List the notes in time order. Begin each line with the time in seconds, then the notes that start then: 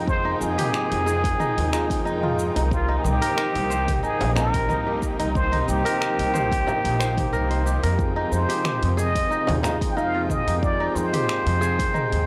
Already playing: F2 C3 F3 G#3 A#3 D#4 F4 G5
0.06 F3 G#3 D#4 C5 G5, kick, shaker
0.25 D#4
0.41 F2 G#4, shaker
0.58 G4, mid tom, open hi-hat, shaker
0.73 G4, finger snap, shaker
0.92 F2, open hi-hat
1.06 G#4, shaker
1.24 kick, open hi-hat, shaker
1.40 D#4, mid tom, shaker
1.58 D#2, open hi-hat
1.71 F3 G#3 D#4 F4, finger snap, shaker
1.88 F3 G#3 D#4, kick, open hi-hat, shaker
1.92 G5
2.05 F2 D#4, shaker
2.23 F4, mid tom
2.39 shaker
2.56 C2 D#4, open hi-hat, shaker
2.69 C3 D#3 A#3 C4 F4, kick, shaker
2.73 G4
2.88 D#4
2.98 G#4
3.04 C2 G4, mid tom, shaker
3.21 A#4, open hi-hat, shaker
3.37 A#4, finger snap, shaker
3.55 C2, open hi-hat
3.70 C5, shaker
3.88 kick, mid tom, open hi-hat, shaker
4.03 D#4 G#4, shaker
4.21 A#1, open hi-hat, frame drum
4.35 D#3 A#3 C4 D#4 F4 A#4, finger snap, frame drum, shaker
4.52 D#3 A#3 C4, kick, open hi-hat, shaker
4.56 G4
4.69 C2 D#4, mid tom, shaker
4.87 G4
5.02 kick, shaker
5.19 C2 D#4, open hi-hat, shaker
5.33 D#3 A#3 C4 G4 C5, kick, shaker
5.52 D#4, mid tom, open hi-hat
5.68 C2 G4, shaker
5.85 A#4, open hi-hat, shaker
6.00 A#4, finger snap, shaker
6.19 C2, open hi-hat
6.34 C5, mid tom, shaker
6.52 kick, open hi-hat, shaker
6.67 D#4, frame drum, shaker
6.84 A#1, open hi-hat
6.99 D#3 A#3 C4 F4 C5, finger snap, shaker
7.16 D#3 A#3 C4, kick, mid tom, open hi-hat, shaker
7.20 G4
7.33 C2 A#4, shaker
7.50 C5, open hi-hat
7.66 G4, shaker
7.83 F2 A#4, open hi-hat, shaker
7.97 F3 G#3 D#4, kick, shaker
8.01 G5
8.16 D#4
8.32 F2 C5, shaker
8.49 G4, open hi-hat, shaker
8.64 G4, finger snap, mid tom, shaker
8.83 F2, open hi-hat
8.97 G#4 D#5, shaker
9.15 kick, open hi-hat, shaker
9.30 D#4, shaker
9.47 D#2, mid tom, open hi-hat, frame drum
9.63 F3 G#3 D#4 F4, finger snap, frame drum, shaker
9.79 F3 G#3 D#4 G5, kick, open hi-hat, shaker
9.91 G5
9.97 F2 D#4 F5, shaker
10.14 F4
10.21 G5
10.30 D#5, kick, mid tom, shaker
10.47 F2 D#4, open hi-hat, shaker
10.61 F3 G#3 D#4 D5, kick, shaker
10.65 G5
10.80 D#4
10.90 D5
10.95 F2 C5, shaker
11.13 G4, mid tom, open hi-hat, shaker
11.28 G4, finger snap, shaker
11.46 F2, open hi-hat
11.61 G#4, shaker
11.79 kick, open hi-hat, shaker
11.94 D#4, mid tom, shaker
12.12 D#2, open hi-hat